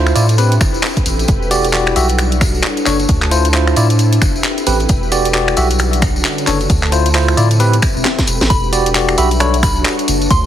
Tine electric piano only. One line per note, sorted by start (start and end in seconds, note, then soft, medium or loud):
0.00 0.13 E4 medium
0.00 0.13 F4 medium
0.00 0.13 C5 medium
0.16 0.26 E4 medium
0.16 0.26 F4 medium
0.16 0.26 D5 medium
0.38 0.54 C4 medium
0.38 0.54 G4 medium
0.38 0.54 B4 loud
1.51 1.66 F#4 medium
1.51 1.66 G4 medium
1.51 1.66 D5 medium
1.73 1.94 F#4 medium
1.73 1.94 G4 medium
1.73 1.94 D5 medium
1.96 2.06 F#4 medium
1.96 2.06 G4 medium
1.96 2.06 E5 medium
2.86 2.97 D4 medium
2.86 2.97 A4 medium
2.86 2.97 C#5 medium
3.31 3.47 E4 medium
3.31 3.47 F4 medium
3.31 3.47 C5 loud
3.54 3.74 E4 medium
3.54 3.74 F4 medium
3.54 3.74 C5 medium
3.77 3.87 E4 medium
3.77 3.87 F4 medium
3.77 3.87 D5 medium
4.67 4.77 C4 medium
4.67 4.77 G4 medium
4.67 4.77 B4 medium
5.12 5.27 F#4 medium
5.12 5.27 G4 medium
5.12 5.27 D5 loud
5.34 5.55 F#4 medium
5.34 5.55 G4 medium
5.34 5.55 D5 medium
5.57 5.67 F#4 medium
5.57 5.67 G4 medium
5.57 5.67 E5 medium
6.47 6.57 D4 medium
6.47 6.57 A4 medium
6.47 6.57 C#5 medium
6.92 7.08 E4 medium
6.92 7.08 F4 medium
6.92 7.08 C5 medium
7.15 7.35 E4 medium
7.15 7.35 F4 medium
7.15 7.35 C5 medium
7.37 7.48 E4 medium
7.37 7.48 F4 medium
7.37 7.48 D5 medium
7.60 7.75 C4 medium
7.60 7.75 G4 medium
7.60 7.75 B4 loud
8.73 8.88 F#4 medium
8.73 8.88 G4 medium
8.73 8.88 D5 medium
8.95 9.16 F#4 medium
8.95 9.16 G4 medium
8.95 9.16 D5 medium
9.18 9.28 F#4 medium
9.18 9.28 G4 medium
9.18 9.28 E5 medium
9.40 9.56 D4 loud
9.40 9.56 A4 medium
9.40 9.56 C#5 loud